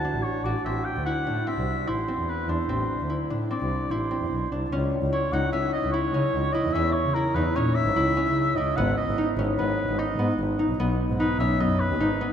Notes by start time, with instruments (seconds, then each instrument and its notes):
Already playing: harp E4 F#4, oboe A5
0.04 harp D4
0.14 double bass A1
0.23 oboe C#5
0.44 double bass A1, harp F#4, oboe D5
0.65 double bass A1, harp C4, oboe E5
0.85 oboe G5
0.96 double bass D2
1.05 harp E4, oboe F#5
1.26 double bass A2, harp D4
1.47 harp C4, oboe E5
1.57 double bass C2
1.87 double bass A1, harp E4, oboe C5
2.08 harp C4
2.18 double bass E2
2.29 oboe B4
2.48 double bass E2, harp D4, oboe C5
2.69 double bass A1, harp C4
3.00 double bass D2
3.10 harp E4
3.30 double bass A2, harp D4
3.51 harp C4, oboe D5
3.61 double bass C2
3.91 double bass A1, harp E4, oboe C5
4.11 harp C4
4.21 double bass E2
4.31 double bass B1
4.51 double bass C2, harp D4
4.71 double bass C#2, harp C#4
5.02 double bass C#2
5.13 harp E4, oboe C#5
5.33 double bass C#2, harp D#4, oboe F#5
5.52 double bass C#2, harp C#4, oboe E5
5.73 oboe D#5
5.83 double bass C#2
5.92 harp E4, oboe C#5
6.14 double bass C#3, harp C#4
6.34 double bass C#2
6.52 harp E4, oboe D#5
6.65 double bass E2
6.73 double bass E2, harp C#4, oboe E5
6.92 oboe C#5
7.05 double bass C#3
7.14 harp E4, oboe A#4
7.35 double bass E2, harp D#4, oboe B4
7.56 double bass A#2, harp C#4, oboe C#5
7.75 oboe E5
7.86 double bass G#1
7.96 double bass C#2, harp E4
8.17 harp C#4
8.26 double bass C#3
8.56 double bass C#2, harp E4, oboe D#5
8.76 double bass G#1, harp B3, oboe F#5
8.97 oboe D#5
9.08 double bass G#1
9.18 harp D#4
9.38 double bass G#1, harp C#4
9.58 double bass G#1, harp B3, oboe B4
9.88 double bass G#1
9.98 harp D#4, oboe D#5
10.18 double bass G#2, harp B3
10.38 double bass G#1
10.59 harp D#4
10.69 double bass B1
10.78 double bass B1, harp B3
11.09 double bass G#2
11.19 harp D#4, oboe B4
11.39 double bass B1, harp C#4, oboe E5
11.60 double bass F#2, harp B3, oboe D#5
11.80 oboe B4
11.91 double bass D#2
12.00 double bass G#1, harp D#4
12.21 harp B3